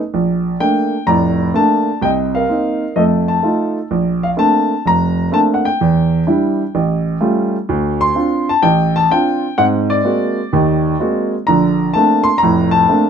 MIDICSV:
0, 0, Header, 1, 2, 480
1, 0, Start_track
1, 0, Key_signature, -2, "major"
1, 0, Tempo, 472813
1, 126, Time_signature, 4, 2, 24, 8
1, 13295, End_track
2, 0, Start_track
2, 0, Title_t, "Upright piano"
2, 0, Program_c, 0, 0
2, 140, Note_on_c, 0, 34, 60
2, 552, Note_off_c, 0, 34, 0
2, 610, Note_on_c, 0, 58, 39
2, 611, Note_on_c, 0, 57, 42
2, 614, Note_on_c, 0, 79, 77
2, 616, Note_on_c, 0, 62, 49
2, 951, Note_off_c, 0, 57, 0
2, 951, Note_off_c, 0, 58, 0
2, 953, Note_off_c, 0, 62, 0
2, 1057, Note_off_c, 0, 79, 0
2, 1083, Note_on_c, 0, 45, 60
2, 1084, Note_on_c, 0, 82, 77
2, 1085, Note_on_c, 0, 29, 59
2, 1104, Note_on_c, 0, 74, 58
2, 1503, Note_off_c, 0, 45, 0
2, 1504, Note_off_c, 0, 29, 0
2, 1562, Note_on_c, 0, 58, 42
2, 1564, Note_on_c, 0, 57, 48
2, 1567, Note_on_c, 0, 62, 51
2, 1580, Note_on_c, 0, 81, 79
2, 1581, Note_off_c, 0, 82, 0
2, 1907, Note_off_c, 0, 58, 0
2, 1908, Note_off_c, 0, 57, 0
2, 1909, Note_off_c, 0, 62, 0
2, 2016, Note_off_c, 0, 74, 0
2, 2045, Note_on_c, 0, 36, 57
2, 2050, Note_on_c, 0, 48, 57
2, 2055, Note_on_c, 0, 79, 76
2, 2068, Note_off_c, 0, 81, 0
2, 2076, Note_on_c, 0, 75, 55
2, 2128, Note_off_c, 0, 79, 0
2, 2382, Note_on_c, 0, 77, 68
2, 2397, Note_on_c, 0, 70, 50
2, 2465, Note_off_c, 0, 36, 0
2, 2467, Note_off_c, 0, 48, 0
2, 2526, Note_on_c, 0, 58, 42
2, 2528, Note_on_c, 0, 60, 42
2, 2536, Note_on_c, 0, 63, 46
2, 2869, Note_off_c, 0, 58, 0
2, 2871, Note_off_c, 0, 60, 0
2, 2874, Note_off_c, 0, 63, 0
2, 2980, Note_off_c, 0, 70, 0
2, 2983, Note_off_c, 0, 75, 0
2, 3004, Note_on_c, 0, 41, 55
2, 3004, Note_on_c, 0, 75, 61
2, 3006, Note_on_c, 0, 57, 54
2, 3014, Note_on_c, 0, 69, 49
2, 3032, Note_off_c, 0, 77, 0
2, 3078, Note_off_c, 0, 75, 0
2, 3333, Note_on_c, 0, 81, 67
2, 3424, Note_off_c, 0, 41, 0
2, 3426, Note_off_c, 0, 57, 0
2, 3481, Note_on_c, 0, 57, 44
2, 3488, Note_on_c, 0, 63, 39
2, 3490, Note_on_c, 0, 65, 48
2, 3781, Note_off_c, 0, 81, 0
2, 3827, Note_off_c, 0, 57, 0
2, 3831, Note_off_c, 0, 63, 0
2, 3831, Note_off_c, 0, 65, 0
2, 3931, Note_off_c, 0, 69, 0
2, 3969, Note_on_c, 0, 34, 65
2, 4298, Note_on_c, 0, 77, 71
2, 4349, Note_off_c, 0, 77, 0
2, 4387, Note_off_c, 0, 34, 0
2, 4435, Note_on_c, 0, 57, 50
2, 4436, Note_on_c, 0, 62, 53
2, 4438, Note_on_c, 0, 58, 42
2, 4440, Note_on_c, 0, 60, 42
2, 4454, Note_on_c, 0, 81, 88
2, 4784, Note_off_c, 0, 57, 0
2, 4785, Note_off_c, 0, 58, 0
2, 4785, Note_off_c, 0, 62, 0
2, 4786, Note_off_c, 0, 60, 0
2, 4930, Note_on_c, 0, 29, 61
2, 4946, Note_off_c, 0, 81, 0
2, 4947, Note_on_c, 0, 82, 82
2, 5347, Note_off_c, 0, 29, 0
2, 5395, Note_on_c, 0, 57, 50
2, 5399, Note_on_c, 0, 58, 43
2, 5400, Note_on_c, 0, 60, 47
2, 5401, Note_on_c, 0, 62, 51
2, 5418, Note_on_c, 0, 81, 87
2, 5432, Note_off_c, 0, 82, 0
2, 5468, Note_off_c, 0, 81, 0
2, 5624, Note_on_c, 0, 78, 62
2, 5728, Note_off_c, 0, 78, 0
2, 5739, Note_on_c, 0, 79, 74
2, 5744, Note_off_c, 0, 57, 0
2, 5746, Note_off_c, 0, 58, 0
2, 5746, Note_off_c, 0, 60, 0
2, 5747, Note_off_c, 0, 62, 0
2, 5900, Note_on_c, 0, 40, 69
2, 6313, Note_off_c, 0, 40, 0
2, 6364, Note_on_c, 0, 62, 47
2, 6369, Note_on_c, 0, 55, 47
2, 6372, Note_on_c, 0, 64, 51
2, 6708, Note_off_c, 0, 62, 0
2, 6710, Note_off_c, 0, 55, 0
2, 6712, Note_off_c, 0, 64, 0
2, 6851, Note_on_c, 0, 33, 68
2, 7136, Note_off_c, 0, 79, 0
2, 7267, Note_off_c, 0, 33, 0
2, 7315, Note_on_c, 0, 55, 52
2, 7316, Note_on_c, 0, 57, 46
2, 7318, Note_on_c, 0, 61, 45
2, 7318, Note_on_c, 0, 65, 54
2, 7663, Note_off_c, 0, 55, 0
2, 7664, Note_off_c, 0, 57, 0
2, 7664, Note_off_c, 0, 61, 0
2, 7665, Note_off_c, 0, 65, 0
2, 7807, Note_on_c, 0, 38, 70
2, 8130, Note_on_c, 0, 84, 92
2, 8225, Note_off_c, 0, 38, 0
2, 8274, Note_on_c, 0, 60, 50
2, 8283, Note_on_c, 0, 65, 54
2, 8285, Note_on_c, 0, 62, 44
2, 8622, Note_off_c, 0, 60, 0
2, 8623, Note_on_c, 0, 81, 83
2, 8626, Note_off_c, 0, 65, 0
2, 8626, Note_off_c, 0, 84, 0
2, 8628, Note_off_c, 0, 62, 0
2, 8756, Note_on_c, 0, 79, 84
2, 8763, Note_on_c, 0, 33, 69
2, 8776, Note_off_c, 0, 81, 0
2, 9095, Note_on_c, 0, 81, 92
2, 9098, Note_off_c, 0, 79, 0
2, 9182, Note_off_c, 0, 33, 0
2, 9242, Note_on_c, 0, 60, 51
2, 9252, Note_off_c, 0, 81, 0
2, 9253, Note_on_c, 0, 79, 82
2, 9254, Note_on_c, 0, 62, 48
2, 9257, Note_on_c, 0, 65, 53
2, 9586, Note_off_c, 0, 60, 0
2, 9592, Note_off_c, 0, 62, 0
2, 9593, Note_off_c, 0, 65, 0
2, 9724, Note_on_c, 0, 78, 87
2, 9728, Note_on_c, 0, 44, 67
2, 9733, Note_on_c, 0, 60, 66
2, 9744, Note_off_c, 0, 79, 0
2, 9798, Note_off_c, 0, 78, 0
2, 10050, Note_on_c, 0, 74, 84
2, 10145, Note_off_c, 0, 44, 0
2, 10148, Note_off_c, 0, 60, 0
2, 10197, Note_on_c, 0, 56, 45
2, 10201, Note_on_c, 0, 58, 45
2, 10202, Note_on_c, 0, 60, 43
2, 10206, Note_on_c, 0, 66, 53
2, 10543, Note_off_c, 0, 56, 0
2, 10545, Note_off_c, 0, 58, 0
2, 10546, Note_off_c, 0, 60, 0
2, 10548, Note_off_c, 0, 66, 0
2, 10686, Note_on_c, 0, 51, 66
2, 10692, Note_on_c, 0, 39, 67
2, 11104, Note_off_c, 0, 51, 0
2, 11107, Note_off_c, 0, 39, 0
2, 11165, Note_on_c, 0, 56, 51
2, 11169, Note_on_c, 0, 58, 46
2, 11169, Note_on_c, 0, 60, 46
2, 11176, Note_on_c, 0, 66, 54
2, 11450, Note_off_c, 0, 74, 0
2, 11507, Note_off_c, 0, 56, 0
2, 11509, Note_off_c, 0, 58, 0
2, 11509, Note_off_c, 0, 60, 0
2, 11512, Note_off_c, 0, 66, 0
2, 11641, Note_on_c, 0, 82, 82
2, 11655, Note_on_c, 0, 50, 65
2, 11660, Note_on_c, 0, 34, 62
2, 12068, Note_off_c, 0, 50, 0
2, 12071, Note_off_c, 0, 34, 0
2, 12117, Note_on_c, 0, 81, 82
2, 12136, Note_on_c, 0, 57, 50
2, 12136, Note_on_c, 0, 58, 43
2, 12137, Note_off_c, 0, 82, 0
2, 12142, Note_on_c, 0, 60, 45
2, 12149, Note_on_c, 0, 62, 55
2, 12421, Note_on_c, 0, 84, 93
2, 12457, Note_off_c, 0, 81, 0
2, 12472, Note_off_c, 0, 57, 0
2, 12472, Note_off_c, 0, 58, 0
2, 12475, Note_off_c, 0, 60, 0
2, 12479, Note_off_c, 0, 62, 0
2, 12569, Note_on_c, 0, 82, 81
2, 12595, Note_off_c, 0, 84, 0
2, 12615, Note_on_c, 0, 29, 65
2, 12617, Note_on_c, 0, 45, 64
2, 12889, Note_off_c, 0, 82, 0
2, 12907, Note_on_c, 0, 81, 92
2, 13028, Note_off_c, 0, 29, 0
2, 13029, Note_off_c, 0, 45, 0
2, 13083, Note_on_c, 0, 57, 50
2, 13085, Note_on_c, 0, 60, 47
2, 13087, Note_on_c, 0, 58, 48
2, 13092, Note_on_c, 0, 62, 56
2, 13295, Note_off_c, 0, 57, 0
2, 13295, Note_off_c, 0, 58, 0
2, 13295, Note_off_c, 0, 60, 0
2, 13295, Note_off_c, 0, 62, 0
2, 13295, Note_off_c, 0, 81, 0
2, 13295, End_track
0, 0, End_of_file